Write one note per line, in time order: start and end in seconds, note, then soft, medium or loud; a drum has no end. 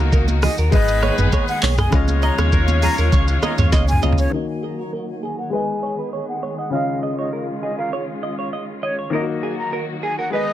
0.00 0.48 C#2 medium
0.00 0.69 D#3 medium
0.00 0.71 D#3 medium
0.00 0.41 F#3 medium
0.00 0.71 F#3 medium
0.00 0.41 A#3 medium
0.00 0.70 A#3 medium
0.00 0.71 A#3 medium
0.00 0.41 D#4 medium
0.00 0.71 F#4 medium
0.00 0.74 F#4 medium
0.00 0.41 A#4 medium
0.00 0.71 D#5 medium
0.12 0.24 A#4 medium
0.12 kick medium
0.12 shaker medium
0.28 high conga medium
0.28 shaker medium
0.42 0.54 G#4 medium
0.42 0.56 D#5 medium
0.42 cross-stick loud
0.42 open hi-hat medium
0.42 low conga medium
0.58 0.70 D#2 medium
0.58 0.73 A#4 medium
0.58 shaker medium
0.70 1.10 G#1 loud
0.70 1.91 D#3 medium
0.70 1.89 G#3 medium
0.70 1.61 G#3 medium
0.70 4.29 G#3 medium
0.70 1.61 B3 medium
0.70 1.91 B3 medium
0.70 1.61 D#4 medium
0.70 1.90 G#4 medium
0.70 1.91 G#4 medium
0.70 1.61 B4 loud
0.70 0.84 B4 medium
0.70 1.91 B4 medium
0.70 1.16 D#5 loud
0.70 kick loud
0.70 low conga medium
0.70 shaker medium
0.75 1.91 D#5 medium
0.88 shaker medium
1.03 1.14 C#5 medium
1.03 cross-stick medium
1.03 high conga medium
1.18 1.30 G#1 medium
1.18 1.29 B4 medium
1.18 mid tom medium
1.18 high conga medium
1.18 shaker medium
1.33 1.44 C#5 medium
1.33 kick medium
1.33 cross-stick medium
1.33 high conga medium
1.33 shaker medium
1.48 1.61 F#5 medium
1.48 shaker medium
1.62 1.87 B1 medium
1.62 1.74 C#5 medium
1.62 clap loud
1.62 open hi-hat medium
1.62 high conga medium
1.78 1.93 D#5 medium
1.78 1.91 G#5 medium
1.78 cross-stick loud
1.78 mid tom loud
1.78 shaker medium
1.90 2.30 C#2 loud
1.90 3.97 C#3 medium
1.90 4.30 D#3 medium
1.90 3.98 G#3 medium
1.90 3.98 C#4 medium
1.90 4.30 C#4 medium
1.90 3.98 F4 medium
1.90 4.30 F4 medium
1.90 3.99 F4 medium
1.90 3.98 C#5 medium
1.90 2.04 F5 medium
1.90 kick loud
1.90 cross-stick loud
1.90 low conga medium
1.90 shaker medium
1.95 4.00 D#5 medium
2.08 high conga medium
2.08 shaker medium
2.22 2.34 D#5 medium
2.22 2.36 A#5 medium
2.22 shaker medium
2.38 2.88 D#2 medium
2.38 2.49 C#5 medium
2.38 cross-stick medium
2.38 high conga medium
2.38 shaker soft
2.52 2.64 A#4 medium
2.52 kick medium
2.52 shaker medium
2.68 high conga medium
2.68 shaker medium
2.82 2.94 G#4 medium
2.82 2.96 A#5 medium
2.82 open hi-hat medium
2.82 low conga medium
2.82 shaker medium
2.98 3.10 D#2 loud
2.98 3.09 A#4 medium
2.98 shaker medium
3.12 3.37 C#2 loud
3.12 3.24 C#5 loud
3.12 kick loud
3.12 low conga medium
3.12 shaker medium
3.28 shaker medium
3.43 3.54 D#5 medium
3.43 cross-stick medium
3.43 high conga medium
3.43 shaker medium
3.58 3.70 D#2 medium
3.58 3.69 C#5 medium
3.58 mid tom medium
3.58 high conga medium
3.58 shaker medium
3.72 3.97 C#2 medium
3.72 3.84 D#5 medium
3.72 kick medium
3.72 snare medium
3.72 high conga medium
3.72 shaker medium
3.88 4.01 G#5 medium
3.88 shaker medium
3.92 mid tom medium
4.01 4.27 C#2 medium
4.01 4.32 C#3 soft
4.01 4.32 C#4 soft
4.01 4.33 F4 soft
4.01 4.19 D#5 medium
4.01 4.33 F5 medium
4.01 high conga medium
4.01 shaker medium
4.13 floor tom loud
4.18 4.29 C#5 medium
4.18 4.31 C#5 medium
4.18 shaker medium
4.30 5.49 D#3 medium
4.30 9.08 D#3 medium
4.30 5.51 F#3 medium
4.30 5.50 A#3 medium
4.30 5.51 A#3 medium
4.30 5.51 F#4 medium
4.30 4.44 A#4 loud
4.35 5.51 D#5 medium
4.63 4.74 G#4 medium
4.79 4.91 A#5 medium
4.93 5.04 A#4 medium
5.23 5.39 G#4 medium
5.23 5.36 G#5 medium
5.39 5.49 A#4 medium
5.39 5.51 F#5 medium
5.50 6.69 G#3 medium
5.50 9.09 G#3 medium
5.50 6.71 B3 medium
5.50 6.70 G#4 medium
5.50 6.71 G#4 medium
5.50 5.64 B4 medium
5.50 6.71 B4 medium
5.50 5.96 G#5 medium
5.55 6.71 D#5 medium
5.83 5.94 C#5 medium
5.99 6.09 B4 medium
6.13 6.24 C#5 medium
6.29 6.41 F#5 medium
6.43 6.54 C#5 medium
6.58 6.69 D#5 medium
6.58 6.71 F#5 medium
6.70 9.07 C#3 medium
6.70 9.08 C#4 medium
6.70 9.10 C#4 medium
6.70 9.10 F4 medium
6.70 9.09 F4 medium
6.70 6.84 F5 medium
6.70 6.98 F5 medium
6.75 9.10 D#5 medium
7.03 7.14 D#5 medium
7.19 7.29 C#5 medium
7.19 7.31 D#5 medium
7.33 7.44 A#4 medium
7.63 7.79 G#4 medium
7.63 7.76 D#5 medium
7.78 7.89 A#4 medium
7.78 7.91 F5 medium
7.93 8.04 C#5 medium
8.23 8.34 D#5 medium
8.39 8.49 C#5 medium
8.53 8.64 D#5 medium
8.83 8.96 C#5 medium
8.83 8.94 D#5 medium
8.99 9.09 C#5 medium
9.10 10.29 D#3 medium
9.10 10.53 D#3 medium
9.10 10.31 F#3 medium
9.10 10.30 A#3 medium
9.10 10.31 A#3 medium
9.10 9.20 F4 medium
9.10 10.31 F#4 medium
9.10 9.24 A#4 loud
9.15 10.31 D#5 medium
9.20 10.34 F#4 medium
9.43 9.54 G#4 medium
9.59 9.71 A#5 medium
9.73 9.84 A#4 medium
10.03 10.14 G#4 medium
10.03 10.16 G#5 medium
10.19 10.29 A#4 medium
10.19 10.31 F#5 medium
10.30 10.53 G#3 medium
10.30 10.53 B3 medium
10.30 10.53 G#4 medium
10.30 10.44 B4 medium
10.30 10.53 B4 medium
10.30 10.53 D#5 medium
10.35 10.53 D#5 medium